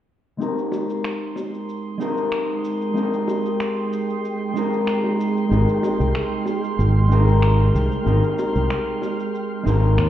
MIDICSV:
0, 0, Header, 1, 6, 480
1, 0, Start_track
1, 0, Key_signature, -4, "major"
1, 0, Tempo, 638298
1, 308, Time_signature, 4, 2, 24, 8
1, 7591, End_track
2, 0, Start_track
2, 0, Title_t, "String machine"
2, 0, Program_c, 0, 50
2, 309, Note_on_c, 0, 79, 78
2, 309, Note_on_c, 0, 87, 87
2, 312, Note_on_c, 0, 84, 71
2, 313, Note_on_c, 0, 56, 85
2, 4119, Note_off_c, 0, 87, 0
2, 4148, Note_on_c, 0, 89, 91
2, 7591, Note_off_c, 0, 56, 0
2, 7591, Note_off_c, 0, 79, 0
2, 7591, Note_off_c, 0, 84, 0
2, 7591, Note_off_c, 0, 89, 0
2, 7591, End_track
3, 0, Start_track
3, 0, Title_t, "Synth texture"
3, 0, Program_c, 1, 99
3, 316, Note_on_c, 1, 84, 78
3, 7591, Note_off_c, 1, 84, 0
3, 7591, End_track
4, 0, Start_track
4, 0, Title_t, "Clean electric guitar"
4, 0, Program_c, 2, 27
4, 288, Note_on_c, 2, 56, 70
4, 299, Note_on_c, 2, 60, 66
4, 304, Note_on_c, 2, 63, 65
4, 314, Note_on_c, 2, 67, 61
4, 320, Note_on_c, 2, 70, 75
4, 1470, Note_off_c, 2, 56, 0
4, 1476, Note_off_c, 2, 60, 0
4, 1478, Note_off_c, 2, 63, 0
4, 1483, Note_off_c, 2, 67, 0
4, 1486, Note_off_c, 2, 70, 0
4, 1488, Note_on_c, 2, 56, 83
4, 1500, Note_on_c, 2, 60, 71
4, 1506, Note_on_c, 2, 63, 76
4, 1512, Note_on_c, 2, 67, 72
4, 1522, Note_on_c, 2, 70, 89
4, 2191, Note_off_c, 2, 56, 0
4, 2197, Note_off_c, 2, 60, 0
4, 2199, Note_off_c, 2, 63, 0
4, 2203, Note_off_c, 2, 67, 0
4, 2207, Note_off_c, 2, 70, 0
4, 2210, Note_on_c, 2, 56, 73
4, 2218, Note_on_c, 2, 60, 70
4, 2227, Note_on_c, 2, 63, 65
4, 2234, Note_on_c, 2, 67, 64
4, 2240, Note_on_c, 2, 70, 78
4, 3391, Note_off_c, 2, 56, 0
4, 3396, Note_off_c, 2, 60, 0
4, 3400, Note_off_c, 2, 63, 0
4, 3403, Note_off_c, 2, 67, 0
4, 3406, Note_off_c, 2, 70, 0
4, 3412, Note_on_c, 2, 56, 80
4, 3418, Note_on_c, 2, 60, 78
4, 3425, Note_on_c, 2, 63, 78
4, 3436, Note_on_c, 2, 67, 72
4, 3441, Note_on_c, 2, 70, 94
4, 4112, Note_off_c, 2, 56, 0
4, 4116, Note_off_c, 2, 60, 0
4, 4119, Note_off_c, 2, 63, 0
4, 4124, Note_off_c, 2, 67, 0
4, 4127, Note_off_c, 2, 70, 0
4, 4128, Note_on_c, 2, 56, 76
4, 4134, Note_on_c, 2, 60, 66
4, 4145, Note_on_c, 2, 63, 69
4, 4151, Note_on_c, 2, 67, 64
4, 4161, Note_on_c, 2, 70, 80
4, 5310, Note_off_c, 2, 56, 0
4, 5314, Note_off_c, 2, 60, 0
4, 5319, Note_off_c, 2, 63, 0
4, 5322, Note_off_c, 2, 67, 0
4, 5326, Note_on_c, 2, 56, 86
4, 5327, Note_off_c, 2, 70, 0
4, 5336, Note_on_c, 2, 60, 74
4, 5344, Note_on_c, 2, 63, 80
4, 5352, Note_on_c, 2, 67, 80
4, 5360, Note_on_c, 2, 70, 98
4, 6030, Note_off_c, 2, 56, 0
4, 6034, Note_off_c, 2, 60, 0
4, 6038, Note_off_c, 2, 63, 0
4, 6043, Note_off_c, 2, 67, 0
4, 6046, Note_off_c, 2, 70, 0
4, 6047, Note_on_c, 2, 56, 71
4, 6058, Note_on_c, 2, 60, 74
4, 6062, Note_on_c, 2, 63, 68
4, 6070, Note_on_c, 2, 67, 65
4, 6079, Note_on_c, 2, 70, 87
4, 7230, Note_off_c, 2, 56, 0
4, 7236, Note_off_c, 2, 60, 0
4, 7237, Note_off_c, 2, 63, 0
4, 7241, Note_off_c, 2, 67, 0
4, 7245, Note_on_c, 2, 56, 87
4, 7246, Note_off_c, 2, 70, 0
4, 7255, Note_on_c, 2, 60, 86
4, 7261, Note_on_c, 2, 63, 83
4, 7269, Note_on_c, 2, 67, 81
4, 7278, Note_on_c, 2, 70, 97
4, 7591, Note_off_c, 2, 56, 0
4, 7591, Note_off_c, 2, 60, 0
4, 7591, Note_off_c, 2, 63, 0
4, 7591, Note_off_c, 2, 67, 0
4, 7591, Note_off_c, 2, 70, 0
4, 7591, End_track
5, 0, Start_track
5, 0, Title_t, "Fingered electric bass"
5, 0, Program_c, 3, 33
5, 4146, Note_on_c, 3, 32, 88
5, 4244, Note_off_c, 3, 32, 0
5, 4513, Note_on_c, 3, 36, 77
5, 4603, Note_off_c, 3, 36, 0
5, 5105, Note_on_c, 3, 32, 96
5, 5786, Note_off_c, 3, 32, 0
5, 5826, Note_on_c, 3, 36, 82
5, 5925, Note_off_c, 3, 36, 0
5, 6065, Note_on_c, 3, 32, 90
5, 6164, Note_off_c, 3, 32, 0
5, 6434, Note_on_c, 3, 36, 77
5, 6523, Note_off_c, 3, 36, 0
5, 7267, Note_on_c, 3, 32, 77
5, 7498, Note_off_c, 3, 32, 0
5, 7503, Note_on_c, 3, 39, 80
5, 7591, Note_off_c, 3, 39, 0
5, 7591, End_track
6, 0, Start_track
6, 0, Title_t, "Drums"
6, 313, Note_on_c, 9, 82, 37
6, 388, Note_off_c, 9, 82, 0
6, 438, Note_on_c, 9, 82, 28
6, 513, Note_off_c, 9, 82, 0
6, 540, Note_on_c, 9, 60, 54
6, 550, Note_on_c, 9, 82, 70
6, 616, Note_off_c, 9, 60, 0
6, 625, Note_off_c, 9, 82, 0
6, 675, Note_on_c, 9, 82, 29
6, 750, Note_off_c, 9, 82, 0
6, 785, Note_on_c, 9, 26, 85
6, 792, Note_on_c, 9, 82, 35
6, 861, Note_off_c, 9, 26, 0
6, 867, Note_off_c, 9, 82, 0
6, 1022, Note_on_c, 9, 60, 51
6, 1032, Note_on_c, 9, 82, 68
6, 1097, Note_off_c, 9, 60, 0
6, 1107, Note_off_c, 9, 82, 0
6, 1159, Note_on_c, 9, 82, 26
6, 1234, Note_off_c, 9, 82, 0
6, 1272, Note_on_c, 9, 82, 38
6, 1347, Note_off_c, 9, 82, 0
6, 1510, Note_on_c, 9, 82, 68
6, 1585, Note_off_c, 9, 82, 0
6, 1635, Note_on_c, 9, 82, 27
6, 1710, Note_off_c, 9, 82, 0
6, 1744, Note_on_c, 9, 26, 83
6, 1750, Note_on_c, 9, 82, 36
6, 1819, Note_off_c, 9, 26, 0
6, 1826, Note_off_c, 9, 82, 0
6, 1989, Note_on_c, 9, 82, 69
6, 2064, Note_off_c, 9, 82, 0
6, 2116, Note_on_c, 9, 82, 29
6, 2191, Note_off_c, 9, 82, 0
6, 2233, Note_on_c, 9, 82, 39
6, 2308, Note_off_c, 9, 82, 0
6, 2357, Note_on_c, 9, 82, 29
6, 2432, Note_off_c, 9, 82, 0
6, 2464, Note_on_c, 9, 60, 54
6, 2474, Note_on_c, 9, 82, 71
6, 2539, Note_off_c, 9, 60, 0
6, 2549, Note_off_c, 9, 82, 0
6, 2598, Note_on_c, 9, 82, 30
6, 2674, Note_off_c, 9, 82, 0
6, 2709, Note_on_c, 9, 26, 84
6, 2715, Note_on_c, 9, 82, 39
6, 2784, Note_off_c, 9, 26, 0
6, 2791, Note_off_c, 9, 82, 0
6, 2955, Note_on_c, 9, 82, 69
6, 3030, Note_off_c, 9, 82, 0
6, 3081, Note_on_c, 9, 82, 28
6, 3156, Note_off_c, 9, 82, 0
6, 3194, Note_on_c, 9, 82, 43
6, 3269, Note_off_c, 9, 82, 0
6, 3433, Note_on_c, 9, 82, 69
6, 3508, Note_off_c, 9, 82, 0
6, 3559, Note_on_c, 9, 82, 30
6, 3634, Note_off_c, 9, 82, 0
6, 3665, Note_on_c, 9, 26, 90
6, 3671, Note_on_c, 9, 82, 39
6, 3740, Note_off_c, 9, 26, 0
6, 3746, Note_off_c, 9, 82, 0
6, 3788, Note_on_c, 9, 60, 54
6, 3863, Note_off_c, 9, 60, 0
6, 3914, Note_on_c, 9, 82, 71
6, 3989, Note_off_c, 9, 82, 0
6, 4039, Note_on_c, 9, 82, 31
6, 4114, Note_off_c, 9, 82, 0
6, 4152, Note_on_c, 9, 82, 41
6, 4228, Note_off_c, 9, 82, 0
6, 4276, Note_on_c, 9, 82, 32
6, 4351, Note_off_c, 9, 82, 0
6, 4385, Note_on_c, 9, 60, 65
6, 4391, Note_on_c, 9, 82, 76
6, 4460, Note_off_c, 9, 60, 0
6, 4467, Note_off_c, 9, 82, 0
6, 4516, Note_on_c, 9, 82, 30
6, 4591, Note_off_c, 9, 82, 0
6, 4624, Note_on_c, 9, 26, 80
6, 4631, Note_on_c, 9, 82, 39
6, 4700, Note_off_c, 9, 26, 0
6, 4706, Note_off_c, 9, 82, 0
6, 4854, Note_on_c, 9, 60, 52
6, 4866, Note_on_c, 9, 82, 74
6, 4929, Note_off_c, 9, 60, 0
6, 4941, Note_off_c, 9, 82, 0
6, 4996, Note_on_c, 9, 82, 29
6, 5071, Note_off_c, 9, 82, 0
6, 5113, Note_on_c, 9, 82, 43
6, 5188, Note_off_c, 9, 82, 0
6, 5352, Note_on_c, 9, 82, 72
6, 5427, Note_off_c, 9, 82, 0
6, 5476, Note_on_c, 9, 82, 31
6, 5551, Note_off_c, 9, 82, 0
6, 5583, Note_on_c, 9, 26, 88
6, 5590, Note_on_c, 9, 82, 43
6, 5658, Note_off_c, 9, 26, 0
6, 5665, Note_off_c, 9, 82, 0
6, 5832, Note_on_c, 9, 82, 72
6, 5907, Note_off_c, 9, 82, 0
6, 5954, Note_on_c, 9, 82, 33
6, 6030, Note_off_c, 9, 82, 0
6, 6067, Note_on_c, 9, 82, 42
6, 6142, Note_off_c, 9, 82, 0
6, 6193, Note_on_c, 9, 82, 29
6, 6268, Note_off_c, 9, 82, 0
6, 6306, Note_on_c, 9, 82, 77
6, 6310, Note_on_c, 9, 60, 53
6, 6381, Note_off_c, 9, 82, 0
6, 6385, Note_off_c, 9, 60, 0
6, 6433, Note_on_c, 9, 82, 30
6, 6508, Note_off_c, 9, 82, 0
6, 6545, Note_on_c, 9, 26, 85
6, 6552, Note_on_c, 9, 82, 39
6, 6621, Note_off_c, 9, 26, 0
6, 6627, Note_off_c, 9, 82, 0
6, 6782, Note_on_c, 9, 60, 54
6, 6791, Note_on_c, 9, 82, 68
6, 6857, Note_off_c, 9, 60, 0
6, 6867, Note_off_c, 9, 82, 0
6, 6917, Note_on_c, 9, 82, 30
6, 6992, Note_off_c, 9, 82, 0
6, 7031, Note_on_c, 9, 82, 42
6, 7106, Note_off_c, 9, 82, 0
6, 7272, Note_on_c, 9, 82, 73
6, 7347, Note_off_c, 9, 82, 0
6, 7395, Note_on_c, 9, 82, 29
6, 7470, Note_off_c, 9, 82, 0
6, 7506, Note_on_c, 9, 26, 83
6, 7513, Note_on_c, 9, 82, 39
6, 7581, Note_off_c, 9, 26, 0
6, 7588, Note_off_c, 9, 82, 0
6, 7591, End_track
0, 0, End_of_file